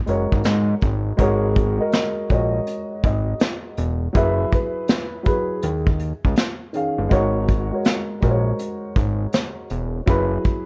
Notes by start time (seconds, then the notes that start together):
0.06 F#1 G#3 F#4 A#4 C#5, closed hi-hat
0.32 G#1, kick
0.44 G#2, snare, closed hi-hat
0.81 G#1, kick, closed hi-hat
1.17 G#1 G#3 F#4 G#4 A#4 C#5, kick, closed hi-hat
1.56 kick, closed hi-hat
1.77 G#3 F#4 A#4 D#5
1.82 A#4
1.92 snare, closed hi-hat
2.29 A#1 G#3 F#4 A#4 C#5, kick, closed hi-hat
2.34 D#5
2.67 closed hi-hat
3.03 G#1 D#5, kick, closed hi-hat
3.40 snare, closed hi-hat
3.77 E1, closed hi-hat
4.13 F#1 F#3 E4 G#4 B4, kick, closed hi-hat
4.17 E5
4.52 B4, kick, closed hi-hat
4.88 snare, closed hi-hat
5.23 F#3 E4 G#4 B4, kick, closed hi-hat
5.28 G#4
5.63 D#2, closed hi-hat
5.87 kick
5.99 closed hi-hat
6.25 C#2, kick
6.36 snare, closed hi-hat
6.73 D#3 C#4 G#4 F5, closed hi-hat
6.98 G1
7.09 G#1 G#3 F#4 A#4 C#5, kick, closed hi-hat
7.48 kick, closed hi-hat
7.71 G#3 F#4 A#4 C#5
7.85 snare, closed hi-hat
8.21 A#1 G#3 F#4 A#4 C5, kick, closed hi-hat
8.31 C#5
8.59 closed hi-hat
8.96 G#1, kick, closed hi-hat
9.33 snare, closed hi-hat
9.70 E1, closed hi-hat
10.06 F#1 F#3 E4 G#4 B4, kick, closed hi-hat
10.44 kick, closed hi-hat